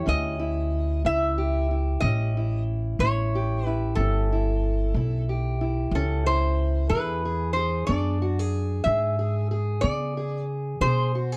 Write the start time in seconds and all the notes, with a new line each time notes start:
Already playing: E4 G4
0.06 D2 E3 C#4 D#5
0.39 E4
1.05 C#2 A2 E4 E5
1.38 G4
1.71 E4
2.00 A1 E3 C#4 D#5
2.37 E4
2.99 A1 A2 E4 C#5
3.35 G4
3.66 E4 B4
3.95 G1 E3 A4
4.00 C#4
4.32 E4
4.94 B1 A2 E4
5.29 G4
5.61 E4
5.91 C#2 E3 C#4 A4
6.26 E4 C5
6.90 E2 E3 G#4 B4
7.25 G#4
7.53 G#4 C5
7.87 F#2 B3 D4 D5
8.22 F#4
8.39 G#4
8.84 G#2 E3 G#4 E5
9.19 G#4
9.51 G#4
9.81 C#3 B3 D5
10.17 G#4
10.81 B2 E3 G#4 C5
11.15 F#4
11.32 G#4